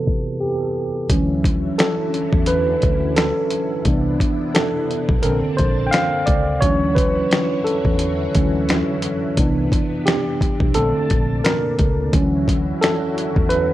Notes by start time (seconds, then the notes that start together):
Already playing: C3 E3 B3 F#4 G4 A4 B4
0.06 kick, closed hi-hat
0.41 G4
1.09 D2 D3 E3 F#3 C#4 E4, kick, closed hi-hat
1.44 kick, closed hi-hat
1.79 A4, finger snap, snare, closed hi-hat
2.14 closed hi-hat
2.33 E2, kick
2.46 B4, closed hi-hat
2.82 D2, kick, closed hi-hat
3.16 A4, finger snap, snare, closed hi-hat
3.50 closed hi-hat
3.85 C2 C3 E3 B3 D4 E4, kick, closed hi-hat
4.20 kick, closed hi-hat
4.54 A4, finger snap, snare, closed hi-hat
4.91 closed hi-hat
5.09 B1, kick
5.22 A#1 D3 A#3 C4 A4 A#4 A5, closed hi-hat
5.57 A#1 C5, kick, closed hi-hat
5.87 G5
5.91 F5, finger snap, snare, closed hi-hat
6.26 C#2 D5, kick, closed hi-hat
6.60 D2 D3 E3 F#3 C#4 E4 F#4 C#5, kick, closed hi-hat
6.95 B4, kick, closed hi-hat
7.31 finger snap, snare, closed hi-hat
7.64 A4, closed hi-hat
7.85 E2, kick
7.99 closed hi-hat
8.35 D2 E3 F#3 C#4, kick, closed hi-hat
8.69 finger snap, snare, closed hi-hat
9.02 closed hi-hat
9.37 C2 C3 E3 B3 D4, kick, closed hi-hat
9.72 kick, closed hi-hat
10.06 G4, finger snap, snare, closed hi-hat
10.41 kick, closed hi-hat
10.60 B1, kick
10.74 A#1 A#2 D3 A3 C4 A4 A5, closed hi-hat
10.97 muted fingered electric bass stroke
11.10 A#1, kick, closed hi-hat
11.44 A#4, finger snap, snare, closed hi-hat
11.79 C#2, kick, closed hi-hat
12.12 D2 D3 E3 F#3 C#4 E4 F#4, kick, closed hi-hat
12.48 kick, closed hi-hat
12.81 A4, finger snap, snare, closed hi-hat
13.18 closed hi-hat
13.36 E2, kick
13.49 B4, closed hi-hat